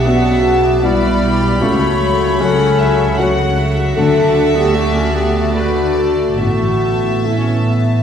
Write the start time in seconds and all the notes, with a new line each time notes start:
Already playing: B1 B2 B3 F#4 B4 E5 B5
0.05 C#3 B3 F#4 D5 F#5 A5
0.26 B4
0.45 E5 F#5
0.64 D6
0.82 G3 B3 E4 F#4 B4 D5 B5
1.02 D5
1.21 F#4 G4
1.41 B3
1.61 C#2 C#3 A3 F#4 A4 C#5
1.80 C#4
2.00 F#3 A4
2.20 F#4
2.39 F#3 C#4 F#4 A4 C#5 F#5
2.59 F#4
2.79 F#3 E5 F#5
2.99 C#6
3.18 F#3 A3 F#4 C#5 F#5
3.39 C#5
3.58 F#4 E5
3.78 F#3
3.96 D2 D3 A3 D4 A4 F#5 A5
4.17 D4
4.36 A3
4.55 B3 F#4 G4
4.74 A3 F#4 A4 D5
4.94 C#4 F#4 A4
5.13 B3 G4 F#5
5.35 A5
5.54 A3 F#4 A4 B4 D5
5.76 F#4
5.96 A3 A4
6.17 D4
6.37 A1 A2 A3 B3 F#4 A4 E5 A5
6.60 E3
6.82 B3
7.03 E4
7.25 A3 B3 C#4 E4 A4
7.46 B4
7.67 B3 E5
7.88 A5